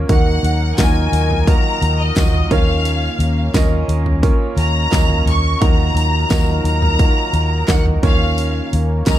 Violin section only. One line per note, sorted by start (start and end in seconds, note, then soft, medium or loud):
0.11 0.75 F#5 medium
0.80 1.48 G#5 medium
1.48 1.99 A#5 loud
2.01 2.52 D#5 medium
2.51 3.51 F5 medium
4.58 5.23 A#5 loud
5.28 5.62 C#6 loud
5.62 6.64 A#5 loud
6.65 7.65 A#5 loud
7.69 7.85 F#5 medium
8.04 8.69 F5 medium
9.09 9.19 A#5 loud